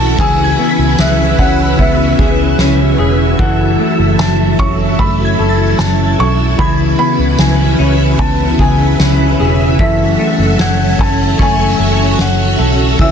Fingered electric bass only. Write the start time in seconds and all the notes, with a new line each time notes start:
Already playing: B1
0.19 C#2
0.79 C#2
0.99 C#2
1.39 C#2
1.79 C#2
2.19 C#2
2.59 C#2
2.99 E1
3.39 F#1
3.99 F#1
4.19 F#1
4.99 F#1
5.39 F#1
5.79 F#1
6.19 B1
6.59 C#2
7.19 C#2
7.39 C#2
7.79 C#2
8.19 C#2
8.59 C#2
8.99 C#2
9.40 E1
9.79 F#1
10.39 F#1
10.59 F#1
10.99 F#1
11.39 F#1
11.79 F#1
12.19 F#1
12.59 B1
12.99 C#2